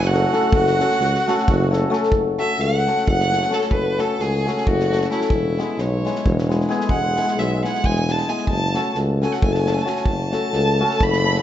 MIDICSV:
0, 0, Header, 1, 6, 480
1, 0, Start_track
1, 0, Key_signature, 3, "minor"
1, 0, Tempo, 453515
1, 555, Time_signature, 7, 3, 24, 8
1, 12089, End_track
2, 0, Start_track
2, 0, Title_t, "Violin"
2, 0, Program_c, 0, 40
2, 68, Note_on_c, 0, 78, 97
2, 568, Note_off_c, 0, 78, 0
2, 587, Note_on_c, 0, 78, 101
2, 1793, Note_off_c, 0, 78, 0
2, 2536, Note_on_c, 0, 76, 88
2, 2758, Note_on_c, 0, 78, 89
2, 2774, Note_off_c, 0, 76, 0
2, 3258, Note_off_c, 0, 78, 0
2, 3267, Note_on_c, 0, 78, 105
2, 3745, Note_on_c, 0, 69, 77
2, 3761, Note_off_c, 0, 78, 0
2, 3938, Note_on_c, 0, 71, 80
2, 3954, Note_off_c, 0, 69, 0
2, 4230, Note_on_c, 0, 69, 78
2, 4246, Note_off_c, 0, 71, 0
2, 4452, Note_on_c, 0, 68, 78
2, 4468, Note_off_c, 0, 69, 0
2, 4882, Note_off_c, 0, 68, 0
2, 4882, Note_on_c, 0, 68, 58
2, 4949, Note_on_c, 0, 66, 88
2, 4965, Note_off_c, 0, 68, 0
2, 5409, Note_off_c, 0, 66, 0
2, 5418, Note_on_c, 0, 64, 62
2, 6142, Note_on_c, 0, 73, 69
2, 6158, Note_off_c, 0, 64, 0
2, 6893, Note_off_c, 0, 73, 0
2, 7303, Note_on_c, 0, 78, 97
2, 7817, Note_on_c, 0, 76, 74
2, 7833, Note_off_c, 0, 78, 0
2, 8086, Note_off_c, 0, 76, 0
2, 8093, Note_on_c, 0, 78, 93
2, 8310, Note_on_c, 0, 80, 91
2, 8326, Note_off_c, 0, 78, 0
2, 8583, Note_on_c, 0, 81, 89
2, 8598, Note_off_c, 0, 80, 0
2, 8777, Note_on_c, 0, 80, 81
2, 8793, Note_off_c, 0, 81, 0
2, 8981, Note_off_c, 0, 80, 0
2, 8988, Note_on_c, 0, 81, 98
2, 9451, Note_off_c, 0, 81, 0
2, 9763, Note_on_c, 0, 80, 72
2, 9867, Note_on_c, 0, 78, 68
2, 9883, Note_off_c, 0, 80, 0
2, 9973, Note_off_c, 0, 78, 0
2, 9979, Note_on_c, 0, 80, 76
2, 10078, Note_on_c, 0, 81, 65
2, 10094, Note_off_c, 0, 80, 0
2, 10151, Note_on_c, 0, 80, 62
2, 10167, Note_off_c, 0, 81, 0
2, 10231, Note_on_c, 0, 81, 65
2, 10247, Note_off_c, 0, 80, 0
2, 10305, Note_on_c, 0, 80, 64
2, 10321, Note_off_c, 0, 81, 0
2, 10390, Note_on_c, 0, 81, 68
2, 10406, Note_off_c, 0, 80, 0
2, 10461, Note_on_c, 0, 80, 63
2, 10476, Note_off_c, 0, 81, 0
2, 10640, Note_off_c, 0, 80, 0
2, 10647, Note_on_c, 0, 81, 96
2, 11674, Note_on_c, 0, 83, 115
2, 11690, Note_off_c, 0, 81, 0
2, 12089, Note_off_c, 0, 83, 0
2, 12089, End_track
3, 0, Start_track
3, 0, Title_t, "Accordion"
3, 0, Program_c, 1, 21
3, 55, Note_on_c, 1, 66, 80
3, 543, Note_off_c, 1, 66, 0
3, 559, Note_on_c, 1, 66, 75
3, 1779, Note_off_c, 1, 66, 0
3, 12089, End_track
4, 0, Start_track
4, 0, Title_t, "Hammered dulcimer"
4, 0, Program_c, 2, 15
4, 133, Note_on_c, 2, 57, 52
4, 143, Note_on_c, 2, 61, 51
4, 151, Note_on_c, 2, 64, 51
4, 152, Note_on_c, 2, 69, 72
4, 268, Note_off_c, 2, 57, 0
4, 273, Note_off_c, 2, 61, 0
4, 277, Note_off_c, 2, 64, 0
4, 277, Note_off_c, 2, 69, 0
4, 340, Note_on_c, 2, 57, 61
4, 346, Note_on_c, 2, 61, 73
4, 351, Note_on_c, 2, 64, 70
4, 358, Note_on_c, 2, 69, 89
4, 475, Note_off_c, 2, 57, 0
4, 478, Note_off_c, 2, 61, 0
4, 480, Note_off_c, 2, 64, 0
4, 484, Note_off_c, 2, 69, 0
4, 838, Note_on_c, 2, 57, 65
4, 844, Note_on_c, 2, 61, 70
4, 857, Note_on_c, 2, 66, 52
4, 859, Note_on_c, 2, 69, 71
4, 978, Note_off_c, 2, 57, 0
4, 981, Note_off_c, 2, 61, 0
4, 987, Note_off_c, 2, 66, 0
4, 988, Note_off_c, 2, 69, 0
4, 1348, Note_on_c, 2, 57, 80
4, 1354, Note_on_c, 2, 61, 68
4, 1362, Note_on_c, 2, 66, 66
4, 1364, Note_on_c, 2, 69, 98
4, 1485, Note_off_c, 2, 57, 0
4, 1488, Note_off_c, 2, 61, 0
4, 1492, Note_off_c, 2, 66, 0
4, 1493, Note_off_c, 2, 69, 0
4, 1808, Note_on_c, 2, 57, 61
4, 1811, Note_on_c, 2, 61, 53
4, 1818, Note_on_c, 2, 66, 62
4, 1825, Note_on_c, 2, 69, 81
4, 1946, Note_off_c, 2, 57, 0
4, 1947, Note_off_c, 2, 61, 0
4, 1950, Note_off_c, 2, 66, 0
4, 1954, Note_off_c, 2, 69, 0
4, 2011, Note_on_c, 2, 57, 86
4, 2022, Note_on_c, 2, 61, 67
4, 2024, Note_on_c, 2, 66, 72
4, 2030, Note_on_c, 2, 69, 93
4, 2151, Note_off_c, 2, 57, 0
4, 2157, Note_off_c, 2, 61, 0
4, 2157, Note_off_c, 2, 66, 0
4, 2160, Note_off_c, 2, 69, 0
4, 2522, Note_on_c, 2, 57, 63
4, 2524, Note_on_c, 2, 61, 47
4, 2531, Note_on_c, 2, 66, 54
4, 2536, Note_on_c, 2, 69, 53
4, 2661, Note_off_c, 2, 57, 0
4, 2662, Note_off_c, 2, 61, 0
4, 2666, Note_off_c, 2, 66, 0
4, 2668, Note_off_c, 2, 69, 0
4, 3029, Note_on_c, 2, 57, 52
4, 3037, Note_on_c, 2, 61, 46
4, 3044, Note_on_c, 2, 66, 52
4, 3050, Note_on_c, 2, 69, 59
4, 3169, Note_off_c, 2, 57, 0
4, 3173, Note_off_c, 2, 61, 0
4, 3176, Note_off_c, 2, 66, 0
4, 3179, Note_off_c, 2, 69, 0
4, 3495, Note_on_c, 2, 57, 52
4, 3504, Note_on_c, 2, 61, 49
4, 3512, Note_on_c, 2, 66, 44
4, 3518, Note_on_c, 2, 69, 52
4, 3632, Note_off_c, 2, 57, 0
4, 3637, Note_off_c, 2, 61, 0
4, 3641, Note_off_c, 2, 66, 0
4, 3644, Note_off_c, 2, 69, 0
4, 3707, Note_on_c, 2, 57, 67
4, 3712, Note_on_c, 2, 61, 62
4, 3717, Note_on_c, 2, 66, 54
4, 3727, Note_on_c, 2, 69, 59
4, 3843, Note_off_c, 2, 57, 0
4, 3846, Note_off_c, 2, 61, 0
4, 3847, Note_off_c, 2, 66, 0
4, 3853, Note_off_c, 2, 69, 0
4, 4211, Note_on_c, 2, 57, 61
4, 4216, Note_on_c, 2, 61, 57
4, 4225, Note_on_c, 2, 66, 60
4, 4230, Note_on_c, 2, 69, 77
4, 4351, Note_off_c, 2, 57, 0
4, 4352, Note_off_c, 2, 61, 0
4, 4357, Note_off_c, 2, 66, 0
4, 4360, Note_off_c, 2, 69, 0
4, 4719, Note_on_c, 2, 57, 64
4, 4729, Note_on_c, 2, 61, 63
4, 4731, Note_on_c, 2, 66, 50
4, 4737, Note_on_c, 2, 69, 70
4, 4858, Note_off_c, 2, 57, 0
4, 4863, Note_off_c, 2, 61, 0
4, 4864, Note_off_c, 2, 66, 0
4, 4867, Note_off_c, 2, 69, 0
4, 5191, Note_on_c, 2, 57, 51
4, 5196, Note_on_c, 2, 61, 41
4, 5200, Note_on_c, 2, 66, 36
4, 5210, Note_on_c, 2, 69, 53
4, 5325, Note_off_c, 2, 57, 0
4, 5328, Note_off_c, 2, 61, 0
4, 5330, Note_off_c, 2, 66, 0
4, 5335, Note_off_c, 2, 69, 0
4, 5399, Note_on_c, 2, 57, 56
4, 5405, Note_on_c, 2, 61, 68
4, 5413, Note_on_c, 2, 66, 60
4, 5419, Note_on_c, 2, 69, 65
4, 5534, Note_off_c, 2, 57, 0
4, 5537, Note_off_c, 2, 61, 0
4, 5541, Note_off_c, 2, 66, 0
4, 5544, Note_off_c, 2, 69, 0
4, 5907, Note_on_c, 2, 56, 54
4, 5911, Note_on_c, 2, 59, 58
4, 5916, Note_on_c, 2, 64, 53
4, 5922, Note_on_c, 2, 68, 71
4, 6045, Note_off_c, 2, 59, 0
4, 6047, Note_off_c, 2, 64, 0
4, 6050, Note_off_c, 2, 68, 0
4, 6387, Note_off_c, 2, 56, 0
4, 6400, Note_on_c, 2, 56, 61
4, 6408, Note_on_c, 2, 59, 45
4, 6411, Note_on_c, 2, 64, 57
4, 6420, Note_on_c, 2, 68, 60
4, 6547, Note_off_c, 2, 59, 0
4, 6548, Note_off_c, 2, 64, 0
4, 6553, Note_off_c, 2, 68, 0
4, 6860, Note_off_c, 2, 56, 0
4, 6872, Note_on_c, 2, 56, 65
4, 6877, Note_on_c, 2, 59, 53
4, 6882, Note_on_c, 2, 64, 58
4, 6891, Note_on_c, 2, 68, 71
4, 7011, Note_off_c, 2, 59, 0
4, 7014, Note_off_c, 2, 64, 0
4, 7018, Note_off_c, 2, 68, 0
4, 7063, Note_off_c, 2, 56, 0
4, 7076, Note_on_c, 2, 56, 77
4, 7083, Note_on_c, 2, 59, 70
4, 7089, Note_on_c, 2, 64, 72
4, 7096, Note_on_c, 2, 68, 98
4, 7218, Note_off_c, 2, 59, 0
4, 7221, Note_off_c, 2, 64, 0
4, 7225, Note_off_c, 2, 68, 0
4, 7563, Note_off_c, 2, 56, 0
4, 7575, Note_on_c, 2, 56, 68
4, 7580, Note_on_c, 2, 59, 57
4, 7590, Note_on_c, 2, 64, 61
4, 7591, Note_on_c, 2, 68, 65
4, 7720, Note_off_c, 2, 59, 0
4, 7726, Note_off_c, 2, 64, 0
4, 7726, Note_off_c, 2, 68, 0
4, 8059, Note_off_c, 2, 56, 0
4, 8072, Note_on_c, 2, 56, 53
4, 8080, Note_on_c, 2, 59, 48
4, 8090, Note_on_c, 2, 64, 58
4, 8098, Note_on_c, 2, 68, 54
4, 8223, Note_off_c, 2, 59, 0
4, 8228, Note_off_c, 2, 64, 0
4, 8232, Note_off_c, 2, 68, 0
4, 8539, Note_off_c, 2, 56, 0
4, 8552, Note_on_c, 2, 56, 43
4, 8560, Note_on_c, 2, 59, 48
4, 8566, Note_on_c, 2, 64, 41
4, 8570, Note_on_c, 2, 68, 54
4, 8692, Note_off_c, 2, 59, 0
4, 8695, Note_off_c, 2, 64, 0
4, 8697, Note_off_c, 2, 68, 0
4, 8753, Note_off_c, 2, 56, 0
4, 8765, Note_on_c, 2, 56, 58
4, 8771, Note_on_c, 2, 59, 56
4, 8776, Note_on_c, 2, 64, 54
4, 8784, Note_on_c, 2, 68, 70
4, 8901, Note_off_c, 2, 59, 0
4, 8904, Note_off_c, 2, 64, 0
4, 8908, Note_off_c, 2, 68, 0
4, 9030, Note_off_c, 2, 56, 0
4, 9247, Note_on_c, 2, 57, 61
4, 9256, Note_on_c, 2, 61, 52
4, 9263, Note_on_c, 2, 66, 63
4, 9265, Note_on_c, 2, 69, 70
4, 9392, Note_off_c, 2, 57, 0
4, 9397, Note_off_c, 2, 61, 0
4, 9401, Note_off_c, 2, 66, 0
4, 9401, Note_off_c, 2, 69, 0
4, 9751, Note_on_c, 2, 57, 57
4, 9758, Note_on_c, 2, 61, 52
4, 9768, Note_on_c, 2, 66, 57
4, 9770, Note_on_c, 2, 69, 69
4, 9896, Note_off_c, 2, 57, 0
4, 9899, Note_off_c, 2, 61, 0
4, 9905, Note_off_c, 2, 66, 0
4, 9905, Note_off_c, 2, 69, 0
4, 10214, Note_on_c, 2, 57, 53
4, 10220, Note_on_c, 2, 61, 46
4, 10226, Note_on_c, 2, 66, 41
4, 10232, Note_on_c, 2, 69, 60
4, 10355, Note_off_c, 2, 57, 0
4, 10359, Note_off_c, 2, 61, 0
4, 10361, Note_off_c, 2, 66, 0
4, 10364, Note_off_c, 2, 69, 0
4, 10422, Note_on_c, 2, 57, 56
4, 10429, Note_on_c, 2, 61, 57
4, 10435, Note_on_c, 2, 66, 65
4, 10442, Note_on_c, 2, 69, 70
4, 10563, Note_off_c, 2, 57, 0
4, 10566, Note_off_c, 2, 61, 0
4, 10569, Note_off_c, 2, 66, 0
4, 10573, Note_off_c, 2, 69, 0
4, 10915, Note_on_c, 2, 57, 53
4, 10923, Note_on_c, 2, 61, 51
4, 10931, Note_on_c, 2, 66, 58
4, 10937, Note_on_c, 2, 69, 67
4, 11062, Note_off_c, 2, 57, 0
4, 11065, Note_off_c, 2, 61, 0
4, 11069, Note_off_c, 2, 66, 0
4, 11072, Note_off_c, 2, 69, 0
4, 11424, Note_on_c, 2, 57, 76
4, 11435, Note_on_c, 2, 61, 77
4, 11439, Note_on_c, 2, 66, 72
4, 11445, Note_on_c, 2, 69, 71
4, 11566, Note_off_c, 2, 57, 0
4, 11572, Note_off_c, 2, 61, 0
4, 11573, Note_off_c, 2, 66, 0
4, 11577, Note_off_c, 2, 69, 0
4, 11889, Note_on_c, 2, 57, 50
4, 11896, Note_on_c, 2, 61, 56
4, 11900, Note_on_c, 2, 66, 51
4, 11909, Note_on_c, 2, 69, 68
4, 12027, Note_off_c, 2, 57, 0
4, 12030, Note_off_c, 2, 61, 0
4, 12032, Note_off_c, 2, 66, 0
4, 12037, Note_off_c, 2, 69, 0
4, 12089, End_track
5, 0, Start_track
5, 0, Title_t, "Tuba"
5, 0, Program_c, 3, 58
5, 0, Note_on_c, 3, 30, 120
5, 286, Note_off_c, 3, 30, 0
5, 554, Note_on_c, 3, 30, 88
5, 857, Note_off_c, 3, 30, 0
5, 1061, Note_on_c, 3, 37, 81
5, 1233, Note_off_c, 3, 37, 0
5, 1570, Note_on_c, 3, 30, 106
5, 1971, Note_off_c, 3, 30, 0
5, 2224, Note_on_c, 3, 30, 73
5, 2532, Note_off_c, 3, 30, 0
5, 2736, Note_on_c, 3, 37, 84
5, 3043, Note_off_c, 3, 37, 0
5, 3243, Note_on_c, 3, 30, 103
5, 3649, Note_off_c, 3, 30, 0
5, 3921, Note_on_c, 3, 30, 72
5, 4227, Note_off_c, 3, 30, 0
5, 4437, Note_on_c, 3, 37, 84
5, 4740, Note_off_c, 3, 37, 0
5, 4950, Note_on_c, 3, 30, 100
5, 5351, Note_off_c, 3, 30, 0
5, 5625, Note_on_c, 3, 28, 83
5, 5926, Note_off_c, 3, 28, 0
5, 6116, Note_on_c, 3, 35, 88
5, 6421, Note_off_c, 3, 35, 0
5, 6623, Note_on_c, 3, 28, 105
5, 7027, Note_off_c, 3, 28, 0
5, 7295, Note_on_c, 3, 28, 70
5, 7599, Note_off_c, 3, 28, 0
5, 7797, Note_on_c, 3, 35, 88
5, 8102, Note_off_c, 3, 35, 0
5, 8307, Note_on_c, 3, 28, 92
5, 8708, Note_off_c, 3, 28, 0
5, 8976, Note_on_c, 3, 30, 83
5, 9278, Note_off_c, 3, 30, 0
5, 9483, Note_on_c, 3, 37, 86
5, 9784, Note_off_c, 3, 37, 0
5, 9985, Note_on_c, 3, 30, 94
5, 10384, Note_off_c, 3, 30, 0
5, 10656, Note_on_c, 3, 30, 73
5, 10955, Note_off_c, 3, 30, 0
5, 11148, Note_on_c, 3, 37, 93
5, 11449, Note_off_c, 3, 37, 0
5, 11654, Note_on_c, 3, 30, 105
5, 12052, Note_off_c, 3, 30, 0
5, 12089, End_track
6, 0, Start_track
6, 0, Title_t, "Drums"
6, 20, Note_on_c, 9, 38, 27
6, 126, Note_off_c, 9, 38, 0
6, 140, Note_on_c, 9, 38, 29
6, 246, Note_off_c, 9, 38, 0
6, 349, Note_on_c, 9, 38, 33
6, 455, Note_off_c, 9, 38, 0
6, 555, Note_on_c, 9, 36, 107
6, 661, Note_off_c, 9, 36, 0
6, 704, Note_on_c, 9, 38, 28
6, 810, Note_off_c, 9, 38, 0
6, 846, Note_on_c, 9, 38, 31
6, 952, Note_off_c, 9, 38, 0
6, 960, Note_on_c, 9, 38, 25
6, 1063, Note_off_c, 9, 38, 0
6, 1063, Note_on_c, 9, 38, 31
6, 1169, Note_off_c, 9, 38, 0
6, 1212, Note_on_c, 9, 38, 27
6, 1317, Note_off_c, 9, 38, 0
6, 1352, Note_on_c, 9, 38, 34
6, 1458, Note_off_c, 9, 38, 0
6, 1460, Note_on_c, 9, 38, 23
6, 1566, Note_off_c, 9, 38, 0
6, 1566, Note_on_c, 9, 36, 107
6, 1672, Note_off_c, 9, 36, 0
6, 1830, Note_on_c, 9, 38, 28
6, 1935, Note_off_c, 9, 38, 0
6, 2040, Note_on_c, 9, 38, 27
6, 2146, Note_off_c, 9, 38, 0
6, 2149, Note_on_c, 9, 38, 23
6, 2241, Note_on_c, 9, 36, 90
6, 2255, Note_off_c, 9, 38, 0
6, 2347, Note_off_c, 9, 36, 0
6, 2535, Note_on_c, 9, 38, 26
6, 2640, Note_off_c, 9, 38, 0
6, 2754, Note_on_c, 9, 38, 26
6, 2860, Note_off_c, 9, 38, 0
6, 3038, Note_on_c, 9, 38, 28
6, 3144, Note_off_c, 9, 38, 0
6, 3146, Note_on_c, 9, 38, 18
6, 3252, Note_off_c, 9, 38, 0
6, 3255, Note_on_c, 9, 36, 88
6, 3361, Note_off_c, 9, 36, 0
6, 3386, Note_on_c, 9, 38, 25
6, 3492, Note_off_c, 9, 38, 0
6, 3515, Note_on_c, 9, 38, 25
6, 3613, Note_off_c, 9, 38, 0
6, 3613, Note_on_c, 9, 38, 26
6, 3716, Note_off_c, 9, 38, 0
6, 3716, Note_on_c, 9, 38, 28
6, 3821, Note_off_c, 9, 38, 0
6, 3821, Note_on_c, 9, 38, 27
6, 3927, Note_off_c, 9, 38, 0
6, 3927, Note_on_c, 9, 36, 83
6, 4033, Note_off_c, 9, 36, 0
6, 4218, Note_on_c, 9, 38, 29
6, 4324, Note_off_c, 9, 38, 0
6, 4440, Note_on_c, 9, 38, 28
6, 4545, Note_off_c, 9, 38, 0
6, 4730, Note_on_c, 9, 38, 29
6, 4836, Note_off_c, 9, 38, 0
6, 4840, Note_on_c, 9, 38, 22
6, 4941, Note_on_c, 9, 36, 83
6, 4946, Note_off_c, 9, 38, 0
6, 5047, Note_off_c, 9, 36, 0
6, 5075, Note_on_c, 9, 38, 21
6, 5181, Note_off_c, 9, 38, 0
6, 5212, Note_on_c, 9, 38, 28
6, 5303, Note_off_c, 9, 38, 0
6, 5303, Note_on_c, 9, 38, 26
6, 5405, Note_off_c, 9, 38, 0
6, 5405, Note_on_c, 9, 38, 24
6, 5511, Note_off_c, 9, 38, 0
6, 5512, Note_on_c, 9, 38, 24
6, 5612, Note_on_c, 9, 36, 90
6, 5618, Note_off_c, 9, 38, 0
6, 5718, Note_off_c, 9, 36, 0
6, 5910, Note_on_c, 9, 38, 22
6, 6016, Note_off_c, 9, 38, 0
6, 6119, Note_on_c, 9, 38, 24
6, 6225, Note_off_c, 9, 38, 0
6, 6407, Note_on_c, 9, 38, 25
6, 6510, Note_off_c, 9, 38, 0
6, 6510, Note_on_c, 9, 38, 22
6, 6616, Note_off_c, 9, 38, 0
6, 6621, Note_on_c, 9, 36, 91
6, 6727, Note_off_c, 9, 36, 0
6, 6756, Note_on_c, 9, 38, 20
6, 6861, Note_off_c, 9, 38, 0
6, 6882, Note_on_c, 9, 38, 26
6, 6988, Note_off_c, 9, 38, 0
6, 6993, Note_on_c, 9, 38, 22
6, 7093, Note_off_c, 9, 38, 0
6, 7093, Note_on_c, 9, 38, 26
6, 7199, Note_off_c, 9, 38, 0
6, 7202, Note_on_c, 9, 38, 28
6, 7295, Note_on_c, 9, 36, 80
6, 7308, Note_off_c, 9, 38, 0
6, 7401, Note_off_c, 9, 36, 0
6, 7583, Note_on_c, 9, 38, 28
6, 7688, Note_off_c, 9, 38, 0
6, 7697, Note_on_c, 9, 38, 25
6, 7803, Note_off_c, 9, 38, 0
6, 7809, Note_on_c, 9, 38, 27
6, 7914, Note_off_c, 9, 38, 0
6, 8088, Note_on_c, 9, 38, 29
6, 8193, Note_off_c, 9, 38, 0
6, 8196, Note_on_c, 9, 38, 16
6, 8299, Note_on_c, 9, 36, 80
6, 8302, Note_off_c, 9, 38, 0
6, 8405, Note_off_c, 9, 36, 0
6, 8421, Note_on_c, 9, 38, 21
6, 8527, Note_off_c, 9, 38, 0
6, 8551, Note_on_c, 9, 38, 20
6, 8648, Note_off_c, 9, 38, 0
6, 8648, Note_on_c, 9, 38, 25
6, 8754, Note_off_c, 9, 38, 0
6, 8760, Note_on_c, 9, 38, 27
6, 8859, Note_off_c, 9, 38, 0
6, 8859, Note_on_c, 9, 38, 18
6, 8965, Note_off_c, 9, 38, 0
6, 8968, Note_on_c, 9, 36, 71
6, 9074, Note_off_c, 9, 36, 0
6, 9253, Note_on_c, 9, 38, 26
6, 9359, Note_off_c, 9, 38, 0
6, 9468, Note_on_c, 9, 38, 23
6, 9574, Note_off_c, 9, 38, 0
6, 9760, Note_on_c, 9, 38, 32
6, 9866, Note_off_c, 9, 38, 0
6, 9871, Note_on_c, 9, 38, 20
6, 9974, Note_on_c, 9, 36, 104
6, 9977, Note_off_c, 9, 38, 0
6, 10080, Note_off_c, 9, 36, 0
6, 10100, Note_on_c, 9, 38, 25
6, 10206, Note_off_c, 9, 38, 0
6, 10229, Note_on_c, 9, 38, 28
6, 10335, Note_off_c, 9, 38, 0
6, 10340, Note_on_c, 9, 38, 25
6, 10439, Note_off_c, 9, 38, 0
6, 10439, Note_on_c, 9, 38, 31
6, 10540, Note_off_c, 9, 38, 0
6, 10540, Note_on_c, 9, 38, 29
6, 10642, Note_on_c, 9, 36, 82
6, 10646, Note_off_c, 9, 38, 0
6, 10748, Note_off_c, 9, 36, 0
6, 10921, Note_on_c, 9, 38, 29
6, 11027, Note_off_c, 9, 38, 0
6, 11145, Note_on_c, 9, 38, 28
6, 11251, Note_off_c, 9, 38, 0
6, 11544, Note_on_c, 9, 38, 22
6, 11647, Note_on_c, 9, 36, 98
6, 11649, Note_off_c, 9, 38, 0
6, 11753, Note_off_c, 9, 36, 0
6, 11776, Note_on_c, 9, 38, 25
6, 11882, Note_off_c, 9, 38, 0
6, 12004, Note_on_c, 9, 38, 28
6, 12089, Note_off_c, 9, 38, 0
6, 12089, End_track
0, 0, End_of_file